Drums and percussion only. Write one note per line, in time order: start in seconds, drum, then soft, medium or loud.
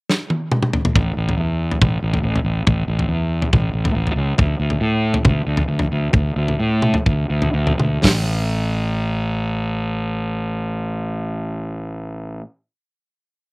0.10 snare medium
0.30 high tom medium
0.52 mid tom medium
0.63 mid tom medium
0.73 floor tom medium
0.85 floor tom medium
0.96 kick loud
0.96 floor tom medium
1.29 floor tom medium
1.71 floor tom medium
1.82 kick loud
1.82 mid tom medium
2.14 floor tom medium
2.36 floor tom medium
2.67 kick loud
2.67 floor tom medium
2.99 floor tom medium
3.42 floor tom medium
3.53 kick loud
3.53 mid tom medium
3.85 floor tom medium
4.07 floor tom medium
4.38 kick loud
4.38 floor tom medium
4.70 floor tom medium
5.14 floor tom medium
5.25 kick loud
5.25 mid tom medium
5.57 floor tom medium
5.79 floor tom medium
6.13 kick loud
6.13 floor tom medium
6.48 floor tom medium
6.82 mid tom medium
6.94 floor tom medium
7.06 kick loud
7.42 floor tom medium
7.67 floor tom medium
7.80 mid tom medium
8.04 kick medium
8.04 snare medium
8.04 open hi-hat medium